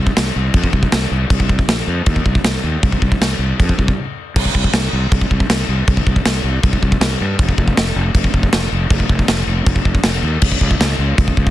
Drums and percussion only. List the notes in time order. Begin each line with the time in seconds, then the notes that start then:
0.07 kick
0.17 snare, china
0.54 kick, china
0.64 kick
0.73 kick
0.83 kick
0.92 snare, china
1.30 kick, china
1.40 kick
1.49 kick
1.59 kick
1.69 snare, china
2.06 kick, china
2.16 kick
2.26 kick
2.35 kick
2.44 snare, china
2.83 kick, china
2.92 kick
3.02 kick
3.12 kick
3.21 snare, china
3.60 kick, china
3.69 kick
3.79 kick
3.88 kick
4.36 kick, crash, china
4.45 kick
4.55 kick
4.64 kick
4.73 snare, china
5.12 kick, china
5.21 kick
5.31 kick
5.40 kick
5.50 snare, china
5.88 kick, china
5.97 kick
6.07 kick
6.16 kick
6.25 snare, china
6.63 kick, china
6.73 kick
6.83 kick
6.92 kick
7.01 snare, china
7.39 kick, china
7.49 kick
7.58 kick
7.68 kick
7.77 snare, china
8.15 kick, china
8.24 kick
8.34 kick
8.43 kick
8.53 snare, china
8.90 kick, china
9.00 kick
9.09 kick
9.19 kick
9.28 snare, china
9.67 kick, china
9.76 kick
9.85 kick
9.95 kick
10.03 snare, china
10.42 kick, china, crash
10.52 kick
10.61 kick
10.71 kick
10.80 snare, china
11.18 kick, china
11.28 kick
11.37 kick
11.47 kick